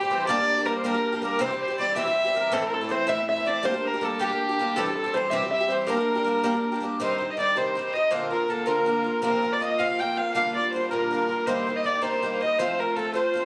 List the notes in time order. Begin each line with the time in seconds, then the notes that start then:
Already playing: G4
0.01 C4 G4
0.05 G3
0.10 E3 G3 C4 G4 C5
0.27 G3 A#3 D4 G4 D5
0.38 A#3 D4 G4 D5
0.54 G4 D5
0.59 A#3 D4
0.65 G3 A#3 D4 G4 A#4
0.78 C5
0.84 G3 A#3 D4 G4 A#4
0.94 A#3 D4 G4
1.12 A#3 D4 G4
1.21 G3 A#3 D4 G4 A#4
1.39 C3 E3 G3 C4 G4 C5
1.51 G3 C4 G4
1.61 C5
1.68 G3 C4 G4
1.78 E3 G3 C4 G4 D5
1.96 C3 E3 G3 C4 G4 E5
2.05 G3 C4 G4
2.25 G3 C4 G4
2.34 E3 G3 C4 G4 A#4
2.52 A2 E3 A3 C4 E4 A4
2.61 A3 C4 E4
2.68 A#4
2.72 A4
2.81 A3 C4 E4
2.87 E3 C4 C5 D5
2.91 A3 E4 C5
3.07 A2 E3 A3 C4 E4 E5
3.17 A3 C4 E4
3.28 E5
3.37 A3 C4 E4
3.45 E3 A3 C4 E4 D5
3.63 G3 A#3 D4 G4 C5
3.74 A#3 D4 G4
3.84 A#4
3.94 A#3 D4 G4
4.01 G3 A#3 D4 G4 A4
4.19 G3 A#3 D4 G4
4.29 A#3 D4 G4
4.49 A#3 D4 G4
4.59 G3 A#3 D4 G4
4.75 C3 E3 G3 C4 G4 A4
4.86 G3 C4 G4
4.95 A4
5.04 G3 C4 G4
5.14 E3 G3 C4 G4 C5
5.30 C3 E3 G3 C4 G4 E5
5.42 G3 C4 G4
5.51 E5
5.61 G3 C4 G4
5.68 E3 G3 C4 G4 C5
5.82 C5
5.87 G3 A#3 D4 G4 A#4
5.97 A#3 D4 G4
6.15 A#3 D4 G4
6.24 G3 A#3 D4 G4
6.43 G3 A#3 D4 G4
6.54 A#3 D4 G4
6.72 A#3 D4 G4
6.80 G3 A#3 D4 G4
7.00 C3 D#3 G3 C4 D#4 C5
7.18 G3 C4 D#4
7.28 D#5
7.37 D#3 G3 C4 D#4 D5
7.56 C3 D#3 G3 C4 D#4 C5
7.75 D#3 G3 C4 D#4
7.85 C5
7.93 G3 C4 D#4 D#5
8.11 A#2 D3 A#3 C4 F4 C5
8.31 A#3 C4 F4 A#4
8.48 D3 A#3 C4 F4 A4
8.66 A#2 D3 A#3 C4 F4 A#4
8.86 D3 A#3 C4 F4
9.04 A#3 C4 F4
9.22 C3 F3 A#3 C4 F4 A#4
9.42 A#3 C4 F4
9.51 D5
9.60 F3 A#3 C4 F4 D#5
9.77 C3 F3 A#3 C4 F4 F5
9.97 F3 A#3 C4 G5
10.02 F4
10.15 C4 F4 F5
10.19 A#3
10.33 A#2 D3 G3 A#3 F4 F5
10.53 A#3 F4 D5
10.58 G3
10.71 D3 G3 A#3 C5
10.76 F4
10.90 A#2 D3 G3 A#3 F4 A#4
11.11 D3 G3 A#3 F4
11.29 G3 A#3 F4
11.46 C3 D#3 G3 A#3 D#4 C5
11.67 G3 A#3 D#4
11.76 D#5
11.84 D#3 G3 A#3 D#4 D5
12.02 C3 D#3 G3 A#3 D#4 C5
12.22 D#3 G3 A#3 D#4
12.32 C5
12.41 G3 A#3 D#4 D#5
12.59 F3 A3 C4 F4 C5
12.79 A3 C4 F4 A#4
12.96 F3 A3 C4 F4 A4
13.14 F3 A3 C4 F4 C5
13.34 F3 A3 C4 F4